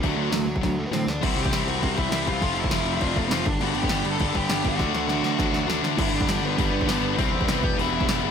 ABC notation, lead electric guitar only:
X:1
M:4/4
L:1/16
Q:1/4=202
K:G
V:1 name="Lead electric guitar"
[F,F]8- [F,F]2 [A,A] [B,B] [Cc]2 [Dd]2 | [Ff]2 [Gg]4 [Ff]4 [Ee]4 [=F=f]2- | [=F=f]2 [Ee]6 [Dd]2 [A,A] [B,B] [Cc]2 [Dd]2 | [Ff]2 [Gg]4 [Aa]4 [Gg]4 [Ff]2- |
[Ff]12 z4 | [Ee]2 [Dd]4 [B,B]2 [B,B]8 | [Cc]4 [B,B]4 [Ee]4 z4 |]